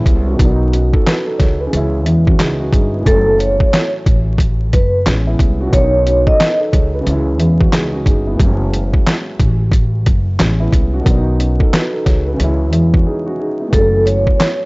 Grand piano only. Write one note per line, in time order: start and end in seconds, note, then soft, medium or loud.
0.00 0.41 G#3 medium
0.00 0.26 B3 medium
0.00 0.28 C#4 medium
0.00 0.25 E4 medium
0.27 0.59 C#4 medium
0.27 0.59 F#4 medium
0.34 1.67 B2 medium
0.34 1.68 D#3 medium
0.39 1.70 F#3 medium
0.39 1.71 B3 medium
0.44 0.50 D4 medium
0.50 0.78 D#4 medium
0.72 0.93 C#4 medium
0.72 0.92 F#4 medium
0.93 1.06 D#4 medium
0.93 1.05 A4 medium
1.06 1.26 F#4 medium
1.06 1.26 B4 medium
1.27 1.39 D#4 medium
1.27 1.39 A4 medium
1.38 1.59 G#4 medium
1.38 1.59 C#5 medium
1.60 1.92 F#4 medium
1.60 1.92 B4 medium
1.67 3.00 C#3 medium
1.67 3.02 E3 medium
1.72 3.03 G#3 medium
1.72 2.06 C#4 medium
1.77 2.04 E4 medium
2.06 2.26 B3 medium
2.06 2.26 E4 medium
2.27 2.39 C#4 medium
2.27 2.39 F#4 medium
2.40 2.60 D#4 medium
2.40 2.59 G#4 medium
2.60 2.72 C#4 medium
2.60 2.72 F#4 medium
2.73 2.93 D#4 medium
2.73 2.93 G#4 medium
2.94 3.26 B3 medium
2.94 3.25 E4 medium
3.01 4.67 A2 medium
3.01 4.68 E3 medium
3.06 4.69 F#3 medium
3.06 4.71 A3 medium
3.11 4.72 C#4 medium
5.06 5.26 G#3 medium
5.06 5.26 C#4 medium
5.27 5.59 B3 medium
5.27 5.59 E4 medium
5.61 5.93 C#4 medium
5.61 5.92 F#4 medium
5.67 7.01 B2 medium
5.67 7.02 D#3 medium
5.72 7.03 F#3 medium
5.72 7.04 B3 medium
5.77 5.83 D4 medium
5.84 6.11 D#4 medium
6.06 6.26 C#4 medium
6.06 6.26 F#4 medium
6.27 6.39 D#4 medium
6.27 6.39 A4 medium
6.40 6.60 B4 medium
6.60 6.72 D#4 medium
6.60 6.72 A4 medium
6.72 6.93 G#4 medium
6.72 6.92 C#5 medium
6.94 7.26 F#4 medium
6.94 7.25 B4 medium
7.00 8.34 C#3 medium
7.00 8.35 E3 medium
7.05 8.36 G#3 medium
7.05 7.40 C#4 medium
7.10 7.38 E4 medium
7.39 7.60 B3 medium
7.39 7.59 E4 medium
7.60 7.72 C#4 medium
7.60 7.72 F#4 medium
7.73 7.93 D#4 medium
7.73 7.93 G#4 medium
7.93 8.05 C#4 medium
7.93 8.05 F#4 medium
8.06 8.27 D#4 medium
8.06 8.26 G#4 medium
8.27 8.59 B3 medium
8.27 8.59 E4 medium
8.34 10.00 A2 medium
8.34 10.01 E3 medium
8.39 10.03 F#3 medium
8.39 10.04 G#3 medium
8.44 10.05 C#4 medium
10.39 10.60 G#3 medium
10.39 10.59 C#4 medium
10.60 10.92 B3 medium
10.60 10.92 E4 medium
10.94 11.26 C#4 medium
10.94 11.25 F#4 medium
11.00 12.34 B2 medium
11.00 12.35 D#3 medium
11.05 12.36 F#3 medium
11.05 12.38 B3 medium
11.10 11.16 D4 medium
11.17 11.44 D#4 medium
11.39 11.59 C#4 medium
11.39 11.59 F#4 medium
11.60 11.72 D#4 medium
11.60 11.72 A4 medium
11.73 11.93 F#4 medium
11.73 11.93 B4 medium
11.93 12.06 D#4 medium
11.93 12.05 A4 medium
12.05 12.26 G#4 medium
12.05 12.26 C#5 medium
12.27 12.59 F#4 medium
12.27 12.59 B4 medium
12.34 13.67 C#3 medium
12.34 13.69 E3 medium
12.39 13.70 G#3 medium
12.39 12.73 C#4 medium
12.44 12.71 E4 medium
12.73 12.93 B3 medium
12.73 12.93 E4 medium
12.93 13.06 C#4 medium
12.93 13.05 F#4 medium
13.07 13.27 D#4 medium
13.07 13.26 G#4 medium
13.26 13.39 C#4 medium
13.26 13.39 F#4 medium
13.40 13.60 D#4 medium
13.40 13.60 G#4 medium
13.60 13.92 B3 medium
13.60 13.92 E4 medium
13.68 14.65 A2 medium
13.68 14.65 E3 medium
13.73 14.65 F#3 medium
13.73 14.65 A3 medium
13.78 14.65 C#4 medium